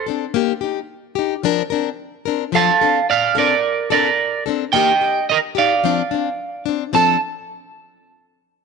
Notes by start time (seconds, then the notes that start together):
0.06 C4 D4 A4
0.34 A#3 D#4 G4
0.61 D#4 G4
1.15 D#4 G4
1.43 F3 C4 D4 A#4
1.70 C4 D4 A#4
2.25 C4 D4 A#4
2.52 F3 C4 D4 A4 F5 A5
2.81 C4 D4 A4
3.10 D5 F5
3.35 C4 D4 A4 A#4 D5
3.90 C4 D4 A4 A#4 D5
4.46 C4 D4 A4
4.73 A#3 D#4 G4 D#5 G5
5.01 G4
5.29 A#4 D#5
5.55 D#4 G4 D5 F5
5.84 F3 C4 D4
6.11 C4 D4
6.66 C4 D4
6.93 F3 C4 D4 A4 A5